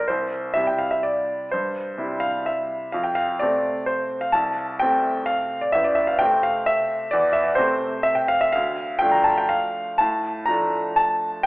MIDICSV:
0, 0, Header, 1, 2, 480
1, 0, Start_track
1, 0, Tempo, 475436
1, 94, Time_signature, 3, 2, 24, 8
1, 2977, Tempo, 465477
1, 9217, Tempo, 488998
1, 11637, End_track
2, 0, Start_track
2, 0, Title_t, "Grand piano"
2, 0, Program_c, 0, 0
2, 77, Note_on_c, 0, 72, 56
2, 96, Note_on_c, 0, 36, 41
2, 259, Control_c, 0, 64, 127
2, 541, Note_on_c, 0, 76, 63
2, 552, Note_off_c, 0, 36, 0
2, 556, Note_on_c, 0, 48, 36
2, 557, Note_off_c, 0, 72, 0
2, 563, Note_on_c, 0, 55, 34
2, 567, Note_on_c, 0, 64, 34
2, 578, Control_c, 0, 64, 0
2, 675, Note_off_c, 0, 76, 0
2, 675, Note_on_c, 0, 79, 48
2, 793, Note_on_c, 0, 77, 49
2, 804, Note_off_c, 0, 79, 0
2, 917, Note_on_c, 0, 76, 47
2, 925, Note_off_c, 0, 77, 0
2, 1040, Note_on_c, 0, 74, 56
2, 1049, Note_off_c, 0, 76, 0
2, 1491, Note_off_c, 0, 48, 0
2, 1494, Note_off_c, 0, 55, 0
2, 1496, Note_off_c, 0, 64, 0
2, 1527, Note_off_c, 0, 74, 0
2, 1529, Note_on_c, 0, 72, 58
2, 1551, Note_on_c, 0, 43, 44
2, 1738, Control_c, 0, 64, 127
2, 1994, Note_on_c, 0, 48, 33
2, 1998, Note_off_c, 0, 43, 0
2, 2002, Note_on_c, 0, 55, 33
2, 2010, Note_on_c, 0, 64, 37
2, 2221, Note_on_c, 0, 77, 65
2, 2247, Note_off_c, 0, 72, 0
2, 2483, Note_off_c, 0, 77, 0
2, 2483, Note_on_c, 0, 76, 50
2, 2511, Control_c, 0, 64, 0
2, 2931, Note_off_c, 0, 48, 0
2, 2935, Note_off_c, 0, 55, 0
2, 2939, Note_off_c, 0, 64, 0
2, 2952, Note_on_c, 0, 77, 52
2, 2967, Note_on_c, 0, 41, 47
2, 2969, Note_off_c, 0, 76, 0
2, 3066, Note_on_c, 0, 79, 50
2, 3082, Note_off_c, 0, 77, 0
2, 3161, Control_c, 0, 64, 127
2, 3186, Note_on_c, 0, 77, 66
2, 3198, Note_off_c, 0, 79, 0
2, 3429, Note_off_c, 0, 41, 0
2, 3434, Note_off_c, 0, 77, 0
2, 3436, Note_on_c, 0, 74, 66
2, 3457, Note_on_c, 0, 48, 35
2, 3461, Note_on_c, 0, 57, 38
2, 3462, Control_c, 0, 64, 0
2, 3467, Note_on_c, 0, 60, 39
2, 3920, Note_on_c, 0, 72, 58
2, 3930, Note_off_c, 0, 74, 0
2, 4277, Note_on_c, 0, 77, 55
2, 4295, Note_off_c, 0, 72, 0
2, 4385, Note_off_c, 0, 48, 0
2, 4387, Note_off_c, 0, 57, 0
2, 4390, Note_off_c, 0, 60, 0
2, 4395, Note_on_c, 0, 81, 73
2, 4409, Note_off_c, 0, 77, 0
2, 4417, Note_on_c, 0, 36, 47
2, 4582, Control_c, 0, 64, 127
2, 4880, Note_off_c, 0, 36, 0
2, 4881, Note_on_c, 0, 79, 74
2, 4884, Note_off_c, 0, 81, 0
2, 4898, Note_on_c, 0, 48, 37
2, 4902, Note_on_c, 0, 57, 35
2, 4906, Note_on_c, 0, 60, 40
2, 5359, Note_on_c, 0, 77, 71
2, 5375, Note_off_c, 0, 79, 0
2, 5395, Control_c, 0, 64, 0
2, 5725, Note_on_c, 0, 74, 55
2, 5730, Note_off_c, 0, 77, 0
2, 5819, Note_off_c, 0, 48, 0
2, 5821, Note_off_c, 0, 57, 0
2, 5823, Note_off_c, 0, 60, 0
2, 5839, Note_on_c, 0, 76, 74
2, 5851, Note_off_c, 0, 74, 0
2, 5857, Note_on_c, 0, 33, 52
2, 5960, Note_on_c, 0, 74, 55
2, 5968, Note_off_c, 0, 76, 0
2, 6072, Note_on_c, 0, 76, 59
2, 6078, Control_c, 0, 64, 127
2, 6089, Note_off_c, 0, 74, 0
2, 6198, Note_on_c, 0, 77, 56
2, 6206, Note_off_c, 0, 76, 0
2, 6316, Note_on_c, 0, 79, 73
2, 6324, Note_off_c, 0, 33, 0
2, 6330, Note_off_c, 0, 77, 0
2, 6340, Note_on_c, 0, 48, 37
2, 6342, Note_on_c, 0, 57, 40
2, 6348, Control_c, 0, 64, 0
2, 6349, Note_on_c, 0, 60, 40
2, 6568, Note_on_c, 0, 77, 65
2, 6572, Note_off_c, 0, 79, 0
2, 6807, Note_on_c, 0, 76, 74
2, 6818, Note_off_c, 0, 77, 0
2, 7250, Note_off_c, 0, 48, 0
2, 7251, Note_off_c, 0, 57, 0
2, 7255, Note_off_c, 0, 60, 0
2, 7267, Note_on_c, 0, 74, 74
2, 7282, Note_off_c, 0, 76, 0
2, 7289, Note_on_c, 0, 40, 54
2, 7449, Control_c, 0, 64, 127
2, 7492, Note_on_c, 0, 76, 62
2, 7507, Note_off_c, 0, 74, 0
2, 7608, Note_on_c, 0, 74, 53
2, 7623, Note_off_c, 0, 76, 0
2, 7723, Note_on_c, 0, 72, 72
2, 7740, Note_off_c, 0, 40, 0
2, 7741, Note_off_c, 0, 74, 0
2, 7750, Note_on_c, 0, 48, 44
2, 7753, Note_on_c, 0, 57, 41
2, 7755, Note_on_c, 0, 60, 46
2, 7767, Control_c, 0, 64, 0
2, 8218, Note_on_c, 0, 76, 73
2, 8230, Note_off_c, 0, 72, 0
2, 8340, Note_on_c, 0, 79, 57
2, 8356, Note_off_c, 0, 76, 0
2, 8478, Note_off_c, 0, 79, 0
2, 8478, Note_on_c, 0, 77, 78
2, 8607, Note_off_c, 0, 77, 0
2, 8607, Note_on_c, 0, 76, 61
2, 8690, Note_off_c, 0, 48, 0
2, 8692, Note_off_c, 0, 57, 0
2, 8693, Note_off_c, 0, 60, 0
2, 8727, Note_on_c, 0, 77, 75
2, 8730, Note_off_c, 0, 76, 0
2, 8754, Note_on_c, 0, 38, 54
2, 8944, Control_c, 0, 64, 127
2, 9203, Note_on_c, 0, 79, 81
2, 9212, Note_off_c, 0, 38, 0
2, 9212, Note_off_c, 0, 77, 0
2, 9227, Note_on_c, 0, 57, 42
2, 9228, Note_on_c, 0, 53, 39
2, 9236, Note_on_c, 0, 62, 42
2, 9330, Note_off_c, 0, 79, 0
2, 9330, Note_on_c, 0, 82, 62
2, 9450, Note_on_c, 0, 81, 63
2, 9455, Note_off_c, 0, 82, 0
2, 9578, Note_off_c, 0, 81, 0
2, 9586, Note_on_c, 0, 79, 58
2, 9697, Note_on_c, 0, 77, 69
2, 9709, Note_off_c, 0, 79, 0
2, 9721, Control_c, 0, 64, 0
2, 10157, Note_off_c, 0, 53, 0
2, 10157, Note_off_c, 0, 57, 0
2, 10162, Note_off_c, 0, 62, 0
2, 10179, Note_on_c, 0, 81, 77
2, 10186, Note_off_c, 0, 77, 0
2, 10200, Note_on_c, 0, 45, 54
2, 10402, Control_c, 0, 64, 127
2, 10646, Note_on_c, 0, 82, 80
2, 10649, Note_off_c, 0, 45, 0
2, 10652, Note_off_c, 0, 81, 0
2, 10672, Note_on_c, 0, 53, 37
2, 10675, Note_on_c, 0, 57, 40
2, 10681, Note_on_c, 0, 62, 41
2, 11138, Note_off_c, 0, 82, 0
2, 11142, Note_on_c, 0, 81, 79
2, 11154, Control_c, 0, 64, 0
2, 11585, Note_off_c, 0, 53, 0
2, 11586, Note_off_c, 0, 57, 0
2, 11590, Note_off_c, 0, 62, 0
2, 11606, Note_on_c, 0, 79, 81
2, 11616, Note_off_c, 0, 81, 0
2, 11637, Note_off_c, 0, 79, 0
2, 11637, End_track
0, 0, End_of_file